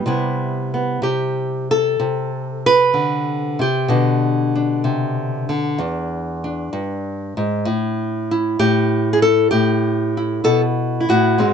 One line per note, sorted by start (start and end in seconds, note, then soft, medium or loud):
0.06 1.01 C3 medium
0.06 3.90 G3 soft
0.06 0.73 B3 soft
0.06 2.66 E4 soft
0.74 1.03 B3 soft
1.02 1.98 C3 medium
1.02 1.70 G4 medium
1.71 3.61 A4 medium
2.00 3.58 C3 medium
2.66 3.90 B4 medium
2.94 3.60 D3 medium
3.59 3.89 C3 medium
3.59 7.38 G4 medium
3.88 5.74 B2 medium
3.88 5.48 D3 soft
3.88 4.54 D4 soft
4.56 5.75 D4 soft
4.84 5.49 C3 medium
5.49 5.78 D3 medium
5.78 6.72 E2 medium
5.78 6.43 D4 soft
6.44 7.63 D4 soft
6.73 7.37 G2 medium
7.37 7.66 G#2 medium
7.65 8.58 A2 medium
8.31 10.16 E4 soft
8.59 9.51 A2 medium
8.59 9.13 G4 medium
9.13 9.22 G#4 medium
9.22 9.50 A4 medium
9.51 10.43 A2 medium
9.51 10.44 G4 medium
10.17 10.99 E4 soft
10.44 11.08 B2 medium
10.44 10.60 A4 medium
11.00 11.39 E4 medium
11.09 11.38 A2 medium
11.09 11.54 F#4 medium
11.38 11.54 G#2 medium
11.38 11.54 G#3 soft
11.38 11.54 C4 soft